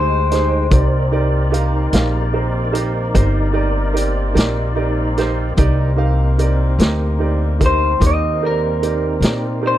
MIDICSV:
0, 0, Header, 1, 7, 480
1, 0, Start_track
1, 0, Key_signature, -3, "minor"
1, 0, Tempo, 810811
1, 422, Time_signature, 12, 3, 24, 8
1, 5790, End_track
2, 0, Start_track
2, 0, Title_t, "Clean electric guitar"
2, 0, Program_c, 0, 27
2, 0, Note_on_c, 0, 72, 79
2, 895, Note_off_c, 0, 72, 0
2, 4534, Note_on_c, 0, 72, 79
2, 4751, Note_off_c, 0, 72, 0
2, 4775, Note_on_c, 0, 75, 64
2, 4991, Note_off_c, 0, 75, 0
2, 5011, Note_on_c, 0, 70, 66
2, 5694, Note_off_c, 0, 70, 0
2, 5727, Note_on_c, 0, 72, 82
2, 5790, Note_off_c, 0, 72, 0
2, 5790, End_track
3, 0, Start_track
3, 0, Title_t, "Grand piano"
3, 0, Program_c, 1, 0
3, 0, Note_on_c, 1, 63, 53
3, 0, Note_on_c, 1, 67, 44
3, 0, Note_on_c, 1, 68, 49
3, 0, Note_on_c, 1, 72, 48
3, 117, Note_off_c, 1, 63, 0
3, 118, Note_off_c, 1, 67, 0
3, 120, Note_off_c, 1, 68, 0
3, 122, Note_off_c, 1, 72, 0
3, 184, Note_on_c, 1, 63, 57
3, 185, Note_on_c, 1, 67, 48
3, 187, Note_on_c, 1, 68, 49
3, 188, Note_on_c, 1, 72, 57
3, 363, Note_off_c, 1, 63, 0
3, 364, Note_off_c, 1, 67, 0
3, 365, Note_off_c, 1, 68, 0
3, 365, Note_off_c, 1, 72, 0
3, 417, Note_on_c, 1, 63, 57
3, 417, Note_on_c, 1, 67, 52
3, 425, Note_on_c, 1, 70, 50
3, 425, Note_on_c, 1, 74, 62
3, 599, Note_off_c, 1, 63, 0
3, 599, Note_off_c, 1, 67, 0
3, 603, Note_off_c, 1, 74, 0
3, 604, Note_off_c, 1, 70, 0
3, 660, Note_on_c, 1, 63, 59
3, 666, Note_on_c, 1, 67, 54
3, 666, Note_on_c, 1, 70, 49
3, 667, Note_on_c, 1, 74, 68
3, 841, Note_off_c, 1, 63, 0
3, 844, Note_off_c, 1, 67, 0
3, 844, Note_off_c, 1, 70, 0
3, 845, Note_off_c, 1, 74, 0
3, 892, Note_on_c, 1, 63, 60
3, 897, Note_on_c, 1, 67, 53
3, 901, Note_on_c, 1, 70, 54
3, 908, Note_on_c, 1, 77, 65
3, 1078, Note_off_c, 1, 63, 0
3, 1080, Note_off_c, 1, 67, 0
3, 1082, Note_off_c, 1, 70, 0
3, 1085, Note_off_c, 1, 77, 0
3, 1138, Note_on_c, 1, 63, 57
3, 1140, Note_on_c, 1, 67, 54
3, 1146, Note_on_c, 1, 70, 53
3, 1149, Note_on_c, 1, 77, 65
3, 1321, Note_off_c, 1, 63, 0
3, 1322, Note_off_c, 1, 67, 0
3, 1324, Note_off_c, 1, 70, 0
3, 1326, Note_off_c, 1, 77, 0
3, 1378, Note_on_c, 1, 63, 47
3, 1380, Note_on_c, 1, 67, 43
3, 1382, Note_on_c, 1, 70, 52
3, 1385, Note_on_c, 1, 72, 51
3, 1561, Note_off_c, 1, 63, 0
3, 1562, Note_off_c, 1, 67, 0
3, 1563, Note_off_c, 1, 70, 0
3, 1564, Note_off_c, 1, 72, 0
3, 1608, Note_on_c, 1, 67, 51
3, 1612, Note_on_c, 1, 63, 57
3, 1616, Note_on_c, 1, 70, 55
3, 1617, Note_on_c, 1, 72, 62
3, 1796, Note_off_c, 1, 67, 0
3, 1798, Note_off_c, 1, 63, 0
3, 1800, Note_off_c, 1, 70, 0
3, 1800, Note_off_c, 1, 72, 0
3, 1858, Note_on_c, 1, 63, 62
3, 1859, Note_on_c, 1, 67, 51
3, 1862, Note_on_c, 1, 72, 67
3, 1863, Note_on_c, 1, 70, 55
3, 2041, Note_off_c, 1, 63, 0
3, 2041, Note_off_c, 1, 67, 0
3, 2043, Note_off_c, 1, 70, 0
3, 2043, Note_off_c, 1, 72, 0
3, 2087, Note_on_c, 1, 63, 58
3, 2090, Note_on_c, 1, 67, 53
3, 2093, Note_on_c, 1, 70, 56
3, 2097, Note_on_c, 1, 74, 69
3, 2275, Note_off_c, 1, 63, 0
3, 2276, Note_off_c, 1, 67, 0
3, 2278, Note_off_c, 1, 70, 0
3, 2280, Note_off_c, 1, 74, 0
3, 2326, Note_on_c, 1, 63, 52
3, 2328, Note_on_c, 1, 67, 53
3, 2331, Note_on_c, 1, 70, 50
3, 2336, Note_on_c, 1, 74, 58
3, 2515, Note_off_c, 1, 63, 0
3, 2516, Note_off_c, 1, 67, 0
3, 2517, Note_off_c, 1, 70, 0
3, 2520, Note_off_c, 1, 74, 0
3, 2569, Note_on_c, 1, 63, 58
3, 2570, Note_on_c, 1, 67, 56
3, 2573, Note_on_c, 1, 70, 49
3, 2577, Note_on_c, 1, 74, 62
3, 2756, Note_off_c, 1, 63, 0
3, 2757, Note_off_c, 1, 67, 0
3, 2758, Note_off_c, 1, 70, 0
3, 2760, Note_off_c, 1, 74, 0
3, 2813, Note_on_c, 1, 63, 62
3, 2818, Note_on_c, 1, 67, 54
3, 2822, Note_on_c, 1, 70, 53
3, 2822, Note_on_c, 1, 74, 60
3, 2998, Note_off_c, 1, 63, 0
3, 3001, Note_off_c, 1, 67, 0
3, 3002, Note_off_c, 1, 74, 0
3, 3003, Note_off_c, 1, 70, 0
3, 3061, Note_on_c, 1, 63, 63
3, 3065, Note_on_c, 1, 67, 61
3, 3067, Note_on_c, 1, 70, 58
3, 3074, Note_on_c, 1, 72, 66
3, 3242, Note_off_c, 1, 63, 0
3, 3244, Note_off_c, 1, 67, 0
3, 3245, Note_off_c, 1, 70, 0
3, 3248, Note_off_c, 1, 72, 0
3, 3299, Note_on_c, 1, 63, 76
3, 3302, Note_on_c, 1, 67, 65
3, 3303, Note_on_c, 1, 70, 62
3, 3305, Note_on_c, 1, 74, 78
3, 3481, Note_off_c, 1, 63, 0
3, 3482, Note_off_c, 1, 67, 0
3, 3483, Note_off_c, 1, 70, 0
3, 3484, Note_off_c, 1, 74, 0
3, 3531, Note_on_c, 1, 63, 57
3, 3531, Note_on_c, 1, 67, 47
3, 3537, Note_on_c, 1, 70, 47
3, 3542, Note_on_c, 1, 77, 67
3, 3716, Note_off_c, 1, 63, 0
3, 3717, Note_off_c, 1, 67, 0
3, 3720, Note_off_c, 1, 70, 0
3, 3722, Note_off_c, 1, 77, 0
3, 3776, Note_on_c, 1, 63, 56
3, 3778, Note_on_c, 1, 67, 51
3, 3782, Note_on_c, 1, 70, 53
3, 3786, Note_on_c, 1, 74, 66
3, 3959, Note_off_c, 1, 63, 0
3, 3960, Note_off_c, 1, 67, 0
3, 3962, Note_off_c, 1, 70, 0
3, 3964, Note_off_c, 1, 74, 0
3, 4019, Note_on_c, 1, 63, 53
3, 4026, Note_on_c, 1, 70, 56
3, 4027, Note_on_c, 1, 67, 55
3, 4032, Note_on_c, 1, 75, 62
3, 4201, Note_off_c, 1, 63, 0
3, 4204, Note_off_c, 1, 67, 0
3, 4204, Note_off_c, 1, 70, 0
3, 4207, Note_off_c, 1, 75, 0
3, 4254, Note_on_c, 1, 63, 54
3, 4258, Note_on_c, 1, 67, 48
3, 4263, Note_on_c, 1, 70, 47
3, 4268, Note_on_c, 1, 74, 54
3, 4438, Note_off_c, 1, 63, 0
3, 4440, Note_off_c, 1, 67, 0
3, 4442, Note_off_c, 1, 70, 0
3, 4445, Note_off_c, 1, 74, 0
3, 4493, Note_on_c, 1, 63, 51
3, 4500, Note_on_c, 1, 67, 41
3, 4504, Note_on_c, 1, 70, 44
3, 4504, Note_on_c, 1, 72, 49
3, 4677, Note_off_c, 1, 63, 0
3, 4681, Note_off_c, 1, 67, 0
3, 4682, Note_off_c, 1, 70, 0
3, 4682, Note_off_c, 1, 72, 0
3, 4734, Note_on_c, 1, 63, 51
3, 4739, Note_on_c, 1, 67, 45
3, 4743, Note_on_c, 1, 86, 55
3, 4744, Note_on_c, 1, 70, 44
3, 4917, Note_off_c, 1, 63, 0
3, 4920, Note_off_c, 1, 67, 0
3, 4922, Note_off_c, 1, 70, 0
3, 4922, Note_off_c, 1, 86, 0
3, 4980, Note_on_c, 1, 63, 51
3, 4985, Note_on_c, 1, 67, 49
3, 4989, Note_on_c, 1, 70, 48
3, 4993, Note_on_c, 1, 74, 52
3, 5160, Note_off_c, 1, 63, 0
3, 5163, Note_off_c, 1, 67, 0
3, 5165, Note_off_c, 1, 70, 0
3, 5167, Note_off_c, 1, 74, 0
3, 5218, Note_on_c, 1, 63, 48
3, 5224, Note_on_c, 1, 67, 45
3, 5225, Note_on_c, 1, 70, 41
3, 5229, Note_on_c, 1, 74, 49
3, 5399, Note_off_c, 1, 63, 0
3, 5402, Note_off_c, 1, 67, 0
3, 5402, Note_off_c, 1, 70, 0
3, 5405, Note_off_c, 1, 74, 0
3, 5456, Note_on_c, 1, 63, 43
3, 5460, Note_on_c, 1, 67, 38
3, 5464, Note_on_c, 1, 70, 45
3, 5468, Note_on_c, 1, 74, 52
3, 5638, Note_off_c, 1, 63, 0
3, 5640, Note_off_c, 1, 67, 0
3, 5642, Note_off_c, 1, 70, 0
3, 5644, Note_off_c, 1, 74, 0
3, 5691, Note_on_c, 1, 63, 51
3, 5693, Note_on_c, 1, 67, 44
3, 5697, Note_on_c, 1, 70, 44
3, 5701, Note_on_c, 1, 74, 54
3, 5790, Note_off_c, 1, 63, 0
3, 5790, Note_off_c, 1, 67, 0
3, 5790, Note_off_c, 1, 70, 0
3, 5790, Note_off_c, 1, 74, 0
3, 5790, End_track
4, 0, Start_track
4, 0, Title_t, "Tonewheel organ"
4, 0, Program_c, 2, 16
4, 0, Note_on_c, 2, 56, 55
4, 0, Note_on_c, 2, 63, 59
4, 0, Note_on_c, 2, 79, 53
4, 395, Note_off_c, 2, 56, 0
4, 395, Note_off_c, 2, 63, 0
4, 395, Note_off_c, 2, 79, 0
4, 418, Note_on_c, 2, 74, 54
4, 419, Note_on_c, 2, 70, 60
4, 423, Note_on_c, 2, 63, 57
4, 3277, Note_off_c, 2, 74, 0
4, 3278, Note_off_c, 2, 70, 0
4, 3280, Note_off_c, 2, 63, 0
4, 3293, Note_on_c, 2, 63, 58
4, 3293, Note_on_c, 2, 70, 53
4, 3294, Note_on_c, 2, 60, 52
4, 5790, Note_off_c, 2, 60, 0
4, 5790, Note_off_c, 2, 63, 0
4, 5790, Note_off_c, 2, 70, 0
4, 5790, End_track
5, 0, Start_track
5, 0, Title_t, "Horn section"
5, 0, Program_c, 3, 61
5, 0, Note_on_c, 3, 56, 69
5, 0, Note_on_c, 3, 67, 59
5, 0, Note_on_c, 3, 79, 64
5, 404, Note_off_c, 3, 56, 0
5, 407, Note_off_c, 3, 67, 0
5, 407, Note_off_c, 3, 79, 0
5, 423, Note_on_c, 3, 58, 67
5, 430, Note_on_c, 3, 48, 53
5, 430, Note_on_c, 3, 60, 57
5, 5790, Note_off_c, 3, 48, 0
5, 5790, Note_off_c, 3, 58, 0
5, 5790, Note_off_c, 3, 60, 0
5, 5790, End_track
6, 0, Start_track
6, 0, Title_t, "Upright bass"
6, 0, Program_c, 4, 32
6, 0, Note_on_c, 4, 38, 84
6, 401, Note_off_c, 4, 38, 0
6, 420, Note_on_c, 4, 36, 74
6, 1120, Note_off_c, 4, 36, 0
6, 1141, Note_on_c, 4, 34, 76
6, 1841, Note_off_c, 4, 34, 0
6, 1862, Note_on_c, 4, 31, 75
6, 2561, Note_off_c, 4, 31, 0
6, 2578, Note_on_c, 4, 34, 76
6, 3279, Note_off_c, 4, 34, 0
6, 3297, Note_on_c, 4, 36, 71
6, 3998, Note_off_c, 4, 36, 0
6, 4018, Note_on_c, 4, 38, 79
6, 4717, Note_off_c, 4, 38, 0
6, 4739, Note_on_c, 4, 39, 78
6, 5437, Note_off_c, 4, 39, 0
6, 5449, Note_on_c, 4, 46, 68
6, 5790, Note_off_c, 4, 46, 0
6, 5790, End_track
7, 0, Start_track
7, 0, Title_t, "Drums"
7, 186, Note_on_c, 9, 42, 45
7, 198, Note_on_c, 9, 38, 26
7, 246, Note_off_c, 9, 42, 0
7, 258, Note_off_c, 9, 38, 0
7, 421, Note_on_c, 9, 42, 69
7, 423, Note_on_c, 9, 36, 96
7, 481, Note_off_c, 9, 42, 0
7, 483, Note_off_c, 9, 36, 0
7, 910, Note_on_c, 9, 42, 57
7, 970, Note_off_c, 9, 42, 0
7, 1141, Note_on_c, 9, 42, 74
7, 1153, Note_on_c, 9, 38, 86
7, 1200, Note_off_c, 9, 42, 0
7, 1212, Note_off_c, 9, 38, 0
7, 1627, Note_on_c, 9, 42, 59
7, 1686, Note_off_c, 9, 42, 0
7, 1865, Note_on_c, 9, 36, 64
7, 1865, Note_on_c, 9, 42, 68
7, 1924, Note_off_c, 9, 36, 0
7, 1924, Note_off_c, 9, 42, 0
7, 2347, Note_on_c, 9, 42, 57
7, 2407, Note_off_c, 9, 42, 0
7, 2585, Note_on_c, 9, 42, 64
7, 2596, Note_on_c, 9, 38, 81
7, 2644, Note_off_c, 9, 42, 0
7, 2656, Note_off_c, 9, 38, 0
7, 3064, Note_on_c, 9, 42, 50
7, 3075, Note_on_c, 9, 38, 26
7, 3123, Note_off_c, 9, 42, 0
7, 3135, Note_off_c, 9, 38, 0
7, 3300, Note_on_c, 9, 42, 66
7, 3303, Note_on_c, 9, 36, 96
7, 3359, Note_off_c, 9, 42, 0
7, 3363, Note_off_c, 9, 36, 0
7, 3783, Note_on_c, 9, 42, 51
7, 3842, Note_off_c, 9, 42, 0
7, 4022, Note_on_c, 9, 42, 63
7, 4034, Note_on_c, 9, 38, 98
7, 4081, Note_off_c, 9, 42, 0
7, 4093, Note_off_c, 9, 38, 0
7, 4504, Note_on_c, 9, 36, 67
7, 4506, Note_on_c, 9, 42, 49
7, 4563, Note_off_c, 9, 36, 0
7, 4566, Note_off_c, 9, 42, 0
7, 4745, Note_on_c, 9, 36, 70
7, 4745, Note_on_c, 9, 42, 68
7, 4804, Note_off_c, 9, 36, 0
7, 4804, Note_off_c, 9, 42, 0
7, 5227, Note_on_c, 9, 42, 54
7, 5286, Note_off_c, 9, 42, 0
7, 5459, Note_on_c, 9, 42, 64
7, 5471, Note_on_c, 9, 38, 96
7, 5519, Note_off_c, 9, 42, 0
7, 5531, Note_off_c, 9, 38, 0
7, 5790, End_track
0, 0, End_of_file